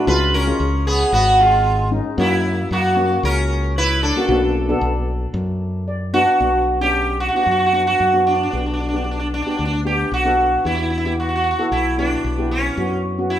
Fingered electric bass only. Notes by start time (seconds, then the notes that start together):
0.07 C#2
0.60 C#2
1.12 G#1
2.18 F#2
2.71 F#2
3.23 C#2
4.29 B1
4.81 B1
5.34 F#2
6.40 B1
7.46 F#2
8.00 F#2
8.53 B1
9.59 D2
10.12 B1
10.65 E2
11.72 B1
12.24 B1
12.77 F#2